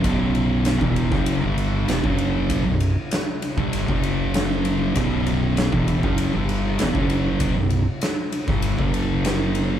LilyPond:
<<
  \new Staff \with { instrumentName = "Distorted electric guitar" } { \clef bass \time 4/4 \key b \minor \tempo 4 = 98 <b,, fis, b,>4~ <b,, fis, b,>16 <e, b, e>8 <fis, cis fis>8 <g, d g>8. <e, b,>16 <fis, cis fis>8.~ | <fis, cis fis>16 <b,, fis,>8 r4 <g, d g>8 <fis, cis fis>4.~ <fis, cis fis>16 | <b,, fis, b,>4~ <b,, fis, b,>16 <e, b, e>8 <fis, cis fis>8 <g, d g>8. <e, b,>16 <fis, cis fis>8.~ | <fis, cis fis>16 <b,, fis,>8 r4 <g, d g>8 <fis, cis fis>4.~ <fis, cis fis>16 | }
  \new Staff \with { instrumentName = "Distorted electric guitar" } { \clef bass \time 4/4 \key b \minor <b,, fis, b,>4~ <b,, fis, b,>16 <e, b, e>8 <fis, cis fis>8 <g, d g>8. <e, b,>16 <fis, cis fis>8.~ | <fis, cis fis>16 <b,, fis,>8 r4 <g, d g>8 <fis, cis fis>4.~ <fis, cis fis>16 | <b,, fis, b,>4~ <b,, fis, b,>16 <e, b, e>8 <fis, cis fis>8 <g, d g>8. <e, b,>16 <fis, cis fis>8.~ | <fis, cis fis>16 <b,, fis,>8 r4 <g, d g>8 <fis, cis fis>4.~ <fis, cis fis>16 | }
  \new Staff \with { instrumentName = "Fingered electric bass" } { \clef bass \time 4/4 \key b \minor b,,,4~ b,,,16 e,,8 fis,,8 g,,8. e,,16 fis,,8.~ | fis,,16 b,,,8 r4 g,,8 fis,,4.~ fis,,16 | b,,,4~ b,,,16 e,,8 fis,,8 g,,8. e,,16 fis,,8.~ | fis,,16 b,,,8 r4 g,,8 fis,,4.~ fis,,16 | }
  \new DrumStaff \with { instrumentName = "Drums" } \drummode { \time 4/4 <bd cymr>8 cymr8 <cymr sn>16 bd16 cymr16 <bd sn>16 cymr8 cymr8 <cymr sn>16 bd16 cymr8 | <bd cymr>8 cymr8 <cymr sn>8 cymr16 bd16 cymr16 bd16 cymr8 <cymr sn>8 cymr8 | <bd cymr>8 cymr8 <cymr sn>16 bd16 cymr16 bd16 cymr8 cymr8 <cymr sn>16 bd16 cymr8 | <bd cymr>8 cymr8 <cymr sn>8 cymr16 <bd sn>16 cymr16 bd16 cymr8 <cymr sn>8 cymr8 | }
>>